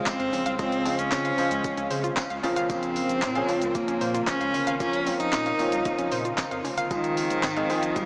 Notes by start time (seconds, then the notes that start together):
Already playing: C#3 G#3 C5 F5
0.06 C4, kick, snare, clap, closed hi-hat, tambourine, shaker
0.20 F2 F5, closed hi-hat, shaker
0.33 A#1 C#4, open hi-hat, tambourine, shaker
0.46 C2 F5, closed hi-hat, shaker
0.59 C#2 F3 G#3 C4 C#4 F4, kick, closed hi-hat, tambourine, shaker
0.72 closed hi-hat, shaker
0.85 F3 G#3 C4 C#4 F4, open hi-hat, tambourine, shaker
0.99 C#2 C#4, closed hi-hat, shaker
1.12 C#3 C#5, kick, snare, clap, closed hi-hat, tambourine, shaker
1.25 F5, closed hi-hat, shaker
1.38 F3 G#3 C#4 F4 C5, open hi-hat, tambourine, shaker
1.51 C#2, closed hi-hat, shaker
1.64 G#3, kick, closed hi-hat, tambourine, shaker
1.77 C#2 C#4, closed hi-hat, shaker
1.91 C#3 C5, open hi-hat, tambourine, shaker
2.04 F4, closed hi-hat, shaker
2.17 kick, snare, clap, closed hi-hat, tambourine, shaker
2.30 C#2 F5, closed hi-hat, shaker
2.43 A#1 C#3 F3 A#3 C4 C#4 F4 A#4, open hi-hat, tambourine, shaker
2.56 G#1 F5, closed hi-hat, shaker
2.70 A#1 A#3 C4, kick, closed hi-hat, tambourine, shaker
2.83 closed hi-hat, shaker
2.96 open hi-hat, tambourine, shaker
3.09 A#1, closed hi-hat, shaker
3.22 A#2 C#5, kick, snare, clap, closed hi-hat, tambourine, shaker
3.35 F3 A#3 C4 C#4 G#4 F5, closed hi-hat, shaker
3.48 F3 A#3 C4 C#4 F4, open hi-hat, tambourine, shaker
3.62 C#2, closed hi-hat, shaker
3.75 A#3, kick, closed hi-hat, tambourine, shaker
3.88 A#1 C#4, closed hi-hat, shaker
4.01 A#2 C5, open hi-hat, tambourine, shaker
4.14 F4, closed hi-hat, shaker
4.27 C#4, kick, snare, clap, closed hi-hat, tambourine, shaker
4.41 C#2 F5, closed hi-hat, shaker
4.54 G1 C#4, open hi-hat, tambourine, shaker
4.67 G#1 F5, closed hi-hat, shaker
4.80 A#1 F3 A#3 C4 C#4 F4, kick, closed hi-hat, tambourine, shaker
4.93 closed hi-hat, shaker
5.06 F3 A#3 C4 C#4 F4, open hi-hat, tambourine, shaker
5.20 A#1 D#4, closed hi-hat, shaker
5.33 A#2 C#5, kick, snare, clap, closed hi-hat, tambourine, shaker
5.46 F5, closed hi-hat, shaker
5.59 F3 A#3 C4 C#4 F4, open hi-hat, tambourine, shaker
5.72 C2, closed hi-hat, shaker
5.85 A#3, kick, closed hi-hat, shaker
5.99 A#1 C#4, closed hi-hat, shaker
6.12 A#2 C5, open hi-hat, tambourine, shaker
6.25 F4, closed hi-hat, shaker
6.38 kick, snare, clap, closed hi-hat, tambourine, shaker
6.51 F2 F5, closed hi-hat, shaker
6.64 F1 C#4, open hi-hat, tambourine, shaker
6.78 G1 F5, closed hi-hat, shaker
6.91 G#1 D#3 F3 G#3 C4 D#4 F4 C5 F5 G#5, kick, closed hi-hat, tambourine, shaker
7.04 closed hi-hat, shaker
7.17 open hi-hat, tambourine, shaker
7.30 G#1, closed hi-hat, shaker
7.43 G#2 D#5, kick, snare, clap, closed hi-hat, tambourine, shaker
7.56 F3 G#3 C4 D#4 F4 F5, closed hi-hat, shaker
7.70 D#3 F3 C4 D#4 F4, open hi-hat, tambourine, shaker
7.83 A#1, closed hi-hat, shaker
7.96 G3 G#3, kick, closed hi-hat, tambourine, shaker